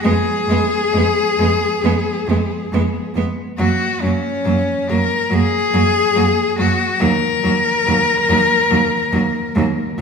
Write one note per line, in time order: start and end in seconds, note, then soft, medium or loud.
0.04 0.13 F2 medium
0.04 0.12 G#3 medium
0.04 0.13 B3 medium
0.04 3.11 G#4 loud
0.47 0.55 F2 medium
0.47 0.57 G#3 medium
0.47 0.59 B3 medium
0.93 1.02 F2 medium
0.93 1.01 G#3 medium
0.93 1.05 B3 medium
1.39 1.47 F2 medium
1.39 1.47 G#3 medium
1.39 1.50 B3 medium
1.83 1.91 F2 medium
1.83 1.92 G#3 medium
1.83 1.93 B3 medium
2.27 2.35 F2 medium
2.27 2.38 G#3 medium
2.27 2.37 B3 medium
2.72 2.80 F2 medium
2.72 2.82 G#3 medium
2.72 2.82 B3 medium
3.15 3.23 F2 medium
3.15 3.24 G#3 medium
3.15 3.25 B3 medium
3.58 3.66 F#2 medium
3.58 3.67 F#3 medium
3.58 3.67 A#3 medium
3.58 4.03 F#4 loud
4.01 4.10 F#2 medium
4.01 4.11 F#3 medium
4.01 4.91 C#4 loud
4.06 4.14 A#3 medium
4.45 4.54 F#2 medium
4.45 4.53 F#3 medium
4.45 4.56 A#3 medium
4.90 4.98 F#2 medium
4.90 4.98 F#3 medium
4.90 5.00 A#3 medium
4.90 5.34 A#4 loud
5.30 5.40 F#2 medium
5.30 5.38 F#3 medium
5.30 5.41 A#3 medium
5.30 6.58 G#4 loud
5.73 5.82 F#2 medium
5.73 5.81 F#3 medium
5.73 5.83 A#3 medium
6.15 6.25 F#2 medium
6.15 6.23 F#3 medium
6.15 6.25 A#3 medium
6.58 6.68 F#2 medium
6.58 6.66 F#3 medium
6.58 6.68 A#3 medium
6.58 7.03 F#4 loud
7.00 7.10 D#2 medium
7.00 7.08 F#3 medium
7.00 7.09 A#3 medium
7.00 10.00 A#4 loud
7.43 7.53 D#2 medium
7.43 7.51 F#3 medium
7.43 7.53 A#3 medium
7.86 7.96 D#2 medium
7.86 7.94 F#3 medium
7.86 7.96 A#3 medium
8.29 8.37 D#2 medium
8.29 8.37 F#3 medium
8.29 8.38 A#3 medium
8.70 8.80 D#2 medium
8.70 8.78 F#3 medium
8.70 8.78 A#3 medium
9.12 9.20 D#2 medium
9.12 9.21 F#3 medium
9.12 9.21 A#3 medium
9.55 9.64 D#2 loud
9.55 9.63 F#3 medium
9.55 9.66 A#3 medium
9.98 10.01 F#3 medium